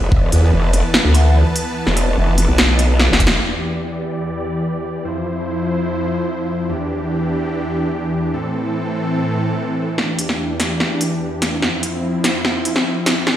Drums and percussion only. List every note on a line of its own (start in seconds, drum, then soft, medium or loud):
0.12 kick loud
0.32 closed hi-hat medium
0.73 closed hi-hat medium
0.94 snare loud
1.15 closed hi-hat medium
1.56 closed hi-hat medium
1.87 snare soft
1.97 closed hi-hat medium
2.38 closed hi-hat medium
2.58 snare loud
2.79 closed hi-hat medium
2.99 snare medium
3.13 snare medium
3.20 kick medium
3.20 closed hi-hat medium
3.27 snare loud
3.41 crash medium
9.98 snare soft
10.19 closed hi-hat medium
10.29 snare soft
10.60 snare soft
10.60 closed hi-hat medium
10.80 snare medium
11.01 closed hi-hat medium
11.42 snare medium
11.42 closed hi-hat medium
11.62 snare medium
11.83 closed hi-hat medium
12.24 snare medium
12.24 closed hi-hat medium
12.45 snare medium
12.65 closed hi-hat medium
12.76 snare medium
13.06 snare medium
13.06 closed hi-hat medium
13.27 snare medium